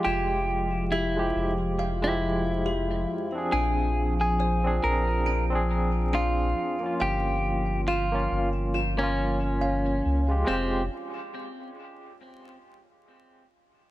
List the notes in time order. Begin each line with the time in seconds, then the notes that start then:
Already playing: F3 G#3 F4 G4
0.05 F1 F4 G4
0.92 E4 G4
1.16 F3 G#3 G4
1.36 F1
1.79 F5
2.02 F3 G#3 E4
2.08 G4
2.66 G4
3.32 C4 D4
3.38 G#4
3.52 A#1 D4 G#4
4.21 G#4
4.40 C5
4.64 C4 D4 G#4
4.84 A#1 A#4
5.26 D4
5.50 C4 D4
5.55 G#4
6.13 D4 F4
6.80 A#3 C#4
6.86 F4
7.00 G1 G4 F5
7.88 F4
8.12 A#3 C#4 F4
8.31 G1
8.74 F4
8.98 A#3 C#4
9.03 F4
9.61 F5
10.05 C#2
10.28 G#3 F4 G4
10.45 F1 G#3 C4 F4
10.49 F4 G4